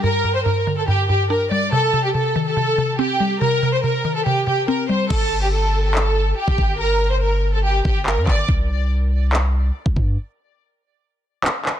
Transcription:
<<
  \new Staff \with { instrumentName = "Violin section" } { \time 4/4 \key bes \major \tempo 4 = 142 bes'8. c''16 bes'8. a'16 g'8 g'8 bes'8 d''8 | a'8. g'16 a'8. a'4~ a'16 g'4 | bes'8. c''16 bes'8. a'16 g'8 g'8 bes'8 c''8 | a'8. g'16 a'8. a'4~ a'16 g'4 |
bes'8. c''16 bes'8. a'16 g'8 g'8 bes'8 d''8 | r1 | r1 | }
  \new Staff \with { instrumentName = "Synth pluck" } { \clef bass \time 4/4 \key bes \major <g, g d'>8 g,8 g,8 d8 g,8 g,8 d'8 g8 | c8 c8 c8 ees8 c8 c8 c'8 g8 | c8 c8 c8 ees8 c8 c8 c'8 g8 | r1 |
r1 | r1 | r1 | }
  \new Staff \with { instrumentName = "808-style bass" } { \clef bass \time 4/4 \key bes \major r1 | r1 | r1 | g,,2. r16 fis,,16 g,,8~ |
g,,2~ g,,8 g,,8. g,16 g,,8 | c,2. r16 c,16 g,8 | r1 | }
  \new DrumStaff \with { instrumentName = "Drums" } \drummode { \time 4/4 r4 r4 r4 r4 | r4 r4 r4 r4 | r4 r4 r4 r4 | <cymc bd>4 r4 hc4 r16 bd16 bd8 |
r4 r4 r8 bd8 hc8 <hc bd>8 | bd4 r4 hc4 r16 bd16 bd8 | r4 r4 r4 hc8 hc8 | }
>>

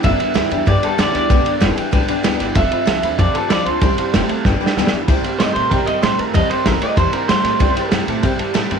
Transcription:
<<
  \new Staff \with { instrumentName = "Honky-tonk piano" } { \time 4/4 \key c \major \tempo 4 = 190 << { r1 | r1 | r1 | r2 g''16 g''8. a''16 b''8. |
r1 | r1 | r1 | } \\ { <b' d'' f''>8 <b' d'' e''>8 <b' d'' g''>8 <b' d'' g''>8 <b' d'' g''>8 <b' d'' g''>8 <b' d'' g''>8 <b' d'' g''>8 | <b' d'' g''>8 <b' d'' g''>8 <b' d'' g''>8 <b' d'' g''>8 <b' d'' g''>8 <b' d'' g''>8 <b' d'' g''>8 <b' d'' g''>8 | <c'' f'' a''>8 <c'' f'' b''>8 <c'' f'' a''>8 <c'' f'' b''>8 <c'' f'' a''>8 <c'' f'' a''>8 <c'' f'' b''>8 <c'' f'' c'''>8 | <c'' e'' g''>8 <c'' e'' a''>8 <c'' e'' g''>8 <c'' e'' a''>8 <b' d''>8 <b' d'' g''>8 <b' d'' g''>8 <b' d'' e''>8 |
<c'' e'' g''>8 <c'' e'' g''>8 <c'' e'' g''>8 <c'' e'' g''>8 <c'' e'' g''>8 <c'' e'' g''>8 <c'' e'' g''>8 <c'' e'' a''>8 | <c'' e'' a''>8 <c'' e'' g''>8 <c'' e'' g''>8 <c'' e'' g''>8 <c'' e'' a''>8 <c'' e'' g''>8 <c'' e'' g''>8 <c'' e'' a''>8 | <c'' e'' g''>8 <c'' e'' g''>8 <c'' e'' g''>8 <c'' e'' a''>8 <c'' e'' g''>8 <c'' e'' a''>8 <c'' e'' a''>8 <c'' e'' g''>8 | } >> }
  \new Staff \with { instrumentName = "Clean electric guitar" } { \time 4/4 \key c \major e''2 d''8 a'8 d''8 d''8~ | d''4. r2 r8 | e''2 d''8 a'8 d''8 c''8~ | c''4. r2 r8 |
r4 ees''8 c''8 bes'8 ees''8 c''8 bes'8 | ees''8 c''8 bes'8 ees''8 c''8 bes'8 c''4~ | c''4 r2. | }
  \new Staff \with { instrumentName = "Steel-string acoustic guitar" } { \time 4/4 \key c \major <g, d g b d' g'>8 <g b d' g'>8 <g, d g b d' g'>8 <g b d' g'>8 <g b d' g'>8 <g b d' g'>8 <g, d g b d' g'>8 <g b d' g'>8 | <g, d g b d' g'>8 <g b d' g'>8 <g, d g b d' g'>8 <g b d' g'>8 <g b d' g'>8 <g b d' g'>8 <g, d g b d' g'>8 <g b d' g'>8 | <f c' f' a'>8 <c' f' a'>8 <f c' f' a'>8 <c' f' a'>8 <f c' f' a'>8 <c' f' a'>8 <f c' f' a'>8 <c' f' a'>8 | <c g c' e' g'>8 <c' e' g'>8 <c g c' e' g'>8 <c' e' g'>8 <g b d' g'>8 <g b d' g'>8 <g, d g b d' g'>8 <g b d' g'>8 |
<c g c' e' g'>8 <c' e' g'>8 <c g c' e' g'>8 <c' e' g'>8 <g c' e' g'>8 <c' e' g'>8 <c g c' e' g'>8 <c' e' g'>8 | <c g c' e' g'>8 <c' e' g'>8 <c g c' e' g'>8 <c' e' g'>8 <g c' e' g'>8 <c' e' g'>8 <c g c' e' g'>8 <c' e' g'>8 | <c g c' e' g'>8 <c' e' g'>8 <c g c' e' g'>8 <c' e' g'>8 <g c' e' g'>8 <c' e' g'>8 <c g c' e' g'>8 <c' e' g'>8 | }
  \new Staff \with { instrumentName = "Clean electric guitar" } { \clef bass \time 4/4 \key c \major <g, d>8 <g, d>8 <g, e>8 <g, e>8 <g, d>8 <g, d>8 <g, e>8 <g, e>8 | <g, d>8 <g, d>8 <g, e>8 <g, e>8 <g, d>8 <g, d>8 <g, e>8 <g, e>8 | <f, c>8 <f, c>8 <f, d>8 <f, d>8 <f, c>8 <f, c>8 <f, d>8 <f, d>8 | <c g>8 <c g>8 <c a>8 <c a>8 <g, d>8 <g, d>8 <g, e>8 <g, e>8 |
<c g>8 <c g>8 <c a>8 <c a>8 <c g>8 <c g>8 <c a>8 <c a>8 | <c g>8 <c g>8 <c a>8 <c a>8 <c g>8 <c g>8 <c a>8 <c a>8 | <c g>8 <c g>8 <c a>8 <c a>8 <c g>8 <c g>8 <c a>8 <c a>8 | }
  \new Staff \with { instrumentName = "Upright bass" } { \clef bass \time 4/4 \key c \major g,,8 r8 d,8 e,8 g,8 r8 f,8 d,8 | b,,8 r8 f,,8 r8 b,,8 r8 d,8 g,,8 | f,,8 r8 c,8 d,8 f,8 r8 d,8 d,8 | c,8 r8 f,,8 r8 g,,8 r8 d,8 f,8 |
c,8 r8 g,8 a,8 c8 r8 a,8 g,8 | e,8 r8 a,,8 r8 e,8 r8 g,8 a,8 | c,8 r8 g,8 a,8 c8 r8 a,8 g,8 | }
  \new DrumStaff \with { instrumentName = "Drums" } \drummode { \time 4/4 <bd cymr>8 cymr8 <cymr sn>8 cymr8 <bd cymr>8 cymr8 <cymr sn>8 <cymr sn>8 | <bd cymr>8 cymr8 <cymr sn>8 cymr8 <bd cymr>8 cymr8 <cymr sn>8 <cymr sn>8 | <bd cymr>8 cymr8 <cymr sn>8 cymr8 <bd cymr>8 cymr8 <cymr sn>8 cymr8 | <bd cymr>8 cymr8 <cymr sn>8 cymr8 \tuplet 3/2 { <bd sn>8 r8 sn8 sn8 sn8 r8 } |
<bd cymr>8 cymr8 <cymr sn>8 cymr8 <bd cymr>8 cymr8 <cymr sn>8 cymr8 | <bd cymr>8 cymr8 <cymr sn>8 cymr8 <bd cymr>8 cymr8 <cymr sn>8 <cymr sn>8 | <bd cymr>8 cymr8 <cymr sn>8 cymr8 <bd cymr>8 cymr8 <cymr sn>8 cymr8 | }
>>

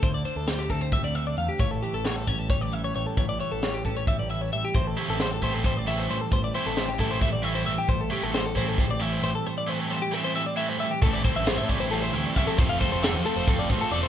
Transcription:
<<
  \new Staff \with { instrumentName = "Clean electric guitar" } { \time 7/8 \key a \phrygian \tempo 4 = 134 c''16 d''16 c''16 a'16 c''16 g'16 a'16 c''16 e''16 d''16 e''16 d''16 f''16 g'16 | cis''16 a'16 g'16 a'16 cis''16 a'16 cis''16 a'16 cis''16 d''16 e''16 cis''16 cis''16 a'16 | cis''16 d''16 cis''16 a'16 cis''16 g'16 a'16 cis''16 e''16 d''16 e''16 cis''16 e''16 g'16 | c''16 a'16 g'16 a'16 c''16 a'16 c''16 a'16 c''16 d''16 e''16 c''16 c''16 a'16 |
c''16 d''16 c''16 a'16 c''16 g'16 a'16 c''16 e''16 d''16 e''16 c''16 e''16 g'16 | c''16 a'16 g'16 a'16 c''16 a'16 c''16 a'16 c''16 d''16 e''16 c''16 c''16 a'16 | c''16 d''16 c''16 a'16 c''16 g'16 a'16 c''16 e''16 d''16 e''16 c''16 e''16 g'16 | a'16 d''16 c''16 e''16 c''16 e''16 d''16 c''16 a'16 c''16 e''16 d''16 e''16 a'16 |
c''16 f''16 c''16 c''16 e''16 c''16 a'16 c''16 a'16 d''16 c''16 a'16 d''16 c''16 | }
  \new Staff \with { instrumentName = "Overdriven electric guitar" } { \time 7/8 \key a \phrygian r2. r8 | r2. r8 | r2. r8 | r8 <e a c' e'>8 r8 <e a c' e'>8 r8 <e a c' e'>8 r8 |
r8 <e a c' e'>8 r8 <e a c' e'>8 r8 <e a c' e'>8 r8 | r8 <e a c' e'>8 r8 <e a c' e'>8 r8 <e a c' e'>8 r8 | r8 <e a c' e'>8 r8 <e a c' e'>8 r8 <e a c' e'>8 r8 | <a, e a c' e'>8 <a c' e'>8 <e a c' e'>8 <a, e a c' e'>8 <e a c' e'>8 <a, e a c' e'>8 <e a c' e'>8 |
<f a c' f' a'>8 <c' f' a'>8 <a c' f' a'>8 <f a c' f' a'>8 <a c' f' a'>8 <f a c' f' a'>8 <a c' f' a'>8 | }
  \new Staff \with { instrumentName = "Clean electric guitar" } { \clef bass \time 7/8 \key a \phrygian << { r4 g16 a16 c'8 g16 a8. a8 | r4 g8 cis'8 g4 g8~ | g4 g8 cis'8 g4 g8 | <e g c' e'>4 g8 a16 c'16 g4 g8~ |
g4 g8 a16 c'16 g4 g8~ | g4 g8 c'8 g4 g8~ | g4 g8 a16 c'16 g4 g8~ | g8 c'8 e'8 g8 c'4 g8 |
r8 c'8 d'16 r16 a8 c'4 a8 | } \\ { <d, d>8 d2 d4 | a,8 e2 e4 | a,8 e2 e4 | a,8 e2 e4 |
a,8 e2 e4 | a,8 e2 e4 | a,8 e2 e4 | a,2~ a,8 e4 |
f,2~ f,8 f4 | } >> }
  \new Staff \with { instrumentName = "Picked electric bass" } { \clef bass \time 7/8 \key a \phrygian d,8 r16 d,8. d,8 r16 d,8. e,16 r16 | a,,8 r16 a,,8. a,,8 r16 a,,8. a,,16 r16 | a,,8 r16 a,,8. a,,8 r16 a,,8. a,,16 r16 | a,,8 r16 a,,8. a,,8 r16 a,,8. a,,16 r16 |
a,,8 r16 a,,8. a,,8 r16 a,,8. a,,16 r16 | a,,8 r16 a,,8. a,,8 r16 a,,8. a,,16 r16 | r2. r8 | a,,8 r16 a,,8 a,16 r16 a,,8. d,16 r16 c,16 r16 |
f,,8 r16 f,,8 f,16 r16 f,,8. a,,16 r16 e,,16 r16 | }
  \new DrumStaff \with { instrumentName = "Drums" } \drummode { \time 7/8 <hh bd>8 hh8 <hh sn>8 <hh bd>8 <hh bd>8 hh8 hh8 | <hh bd>8 hh8 <hh sn>8 <hh bd>8 <hh bd>8 hh8 hh8 | <hh bd>8 hh8 <hh sn>8 <hh bd>8 <hh bd>8 hh8 hh8 | <hh bd>8 hh8 <hh sn>8 <hh bd>8 <hh bd>8 <hh sn>8 hh8 |
<hh bd>8 hh8 <hh sn>8 <hh bd>8 <hh bd>8 hh8 hh8 | <hh bd>8 hh8 <hh sn>8 <hh bd sn>8 <hh bd sn>8 hh8 hh8 | r4 r4 r4. | <hh bd>8 <hh bd>8 <hh sn>8 <hh bd>8 <hh sn>8 hh8 <hh bd sn>8 |
<hh bd>8 <hh bd sn>8 <hh sn>8 hh8 <hh bd>8 <hh bd sn>8 hh8 | }
>>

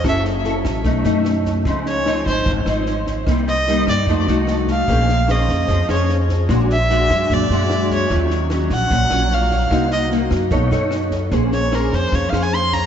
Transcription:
<<
  \new Staff \with { instrumentName = "Erhu" } { \time 4/4 \key bes \minor \tempo 4 = 149 fes''8 r2. r8 | r8 des''4 c''8 r2 | r8 ees''4 d''8 r4. f''8~ | f''4 ees''4. des''8 r4 |
r8 fes''4. d''4. des''8 | r4. ges''4. f''4~ | f''8 ees''8 r2. | r8 des''8 bes'8 c''8 \tuplet 3/2 { des''8 f''8 aes''8 } c'''8 bes''8 | }
  \new Staff \with { instrumentName = "Nylon-string guitar" } { \time 4/4 \key bes \minor << { <des' fes' a'>8 r8 <des' fes' a'>4 <a des' ees'>8 <a des' ees'>4. | <f c' ees'>4 <f c' ees'>4. <f c' ees'>4. | <g bes ees'>8 r8 <g bes ees'>4 <a ees' ges'>8 <a ees' ges'>4. | <des' aes' c''>8 r8 <des' aes' c''>4. <des' aes' c''>4. |
<aes d' fis'>8 r8 <aes d' fis'>4. <aes d' fis'>4. | <ges des' f'>4 <ges des'>4. <ges des' f'>4. | <bes ees' ges'>4 <bes ees' ges'>4 <ees' a' des''>8 <ees' a' des''>4. | <des' aes' c''>4 <des' aes' c''>4. <des' aes' c''>4. | } \\ { ges2 ces2 | des2 aes,2 | c2 f2 | bes2 f2 |
bes,2 bes,2 | ees2 bes,2 | c2 ces'2 | bes2 f2 | } >> }
  \new Staff \with { instrumentName = "Upright bass" } { \clef bass \time 4/4 \key bes \minor ges,,4. a,,8 ces,8 ges,4. | des,4. aes,,8 aes,,8 aes,,4. | c,4. g,8 f,8 c,4. | bes,,4. f,8 f,8 f,4. |
bes,,4. fis,8 fis,8 fis,4. | ees,4. bes,,8 bes,,8 bes,,4. | c,4. ges,8 ces,8 ges,4. | bes,,4. f,8 f,8 f,4. | }
  \new DrumStaff \with { instrumentName = "Drums" } \drummode { \time 4/4 <bd ss sn>8 sn8 sn8 <bd ss sn>8 <bd sn>8 sn8 <ss sn>8 <bd sn>8 | <bd sn>8 sn8 <ss sn>8 <bd sn>8 <bd sn>8 <ss sn>8 sn8 <bd sn>8 | <bd ss sn>8 sn8 sn8 <bd ss sn>8 <bd sn>8 sn8 <ss sn>8 <bd sn>8 | <bd sn>8 sn8 <ss sn>8 <bd sn>8 <bd sn>8 <ss sn>8 sn8 <bd sn>8 |
<bd ss sn>8 sn8 sn8 <bd ss sn>8 <bd sn>8 sn8 <ss sn>8 <bd sn>8 | <bd sn>8 sn8 <ss sn>8 <bd sn>8 <bd sn>8 <ss sn>8 sn8 <bd sn>8 | <bd ss sn>8 sn8 sn8 <bd ss sn>8 <bd sn>8 sn8 <ss sn>8 <bd sn>8 | <bd sn>8 sn8 <ss sn>8 <bd sn>8 <bd sn>8 <ss sn>8 sn8 <bd sn>8 | }
>>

